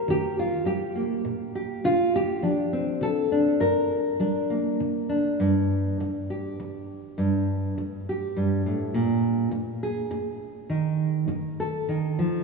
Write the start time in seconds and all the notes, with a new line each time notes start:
0.08 D#3 G4
0.39 F4
0.65 G3 G4
0.96 A#3
1.25 A#2
1.55 G4
1.84 D3 F4
2.16 G4
2.43 F3 D4
2.73 C4
3.01 D3 A4
3.32 D4
3.60 G2 A#4
4.20 G3 D4
4.50 A#3
4.80 D3
5.09 D4
5.40 G2
6.00 muted nylon-string guitar stroke
6.30 G4
6.60 muted nylon-string guitar stroke
7.18 G2
7.78 muted nylon-string guitar stroke
8.09 G4
8.37 G2
8.66 A2
8.94 A#2
9.51 muted nylon-string guitar stroke
9.83 G#4
10.11 muted nylon-string guitar stroke
10.70 D#3
11.28 muted nylon-string guitar stroke
11.60 A4
11.89 D#3
12.19 F3